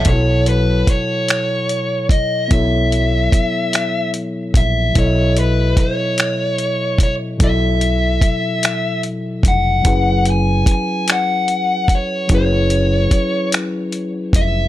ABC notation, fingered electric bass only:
X:1
M:6/8
L:1/8
Q:3/8=49
K:F#dor
V:1 name="Fingered electric bass" clef=bass
B,,,2 z4 | B,,,2 z3 ^A,,, | B,,,2 z4 | B,,,2 z3 ^E,,, |
F,,,2 z4 | F,,,2 z3 ^E,,, |]